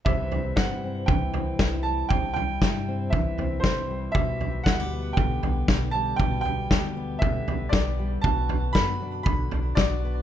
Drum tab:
SD |--o---o-|--o---o-|--o---o-|--o---o-|
FT |oo--oo--|oo--oo--|oo--oo--|oo--oo--|
BD |o-o-o-o-|o-o-o-o-|o-o-o-o-|o-o-o-o-|

SD |--o---o-|
FT |oo--oo--|
BD |o-o-o-o-|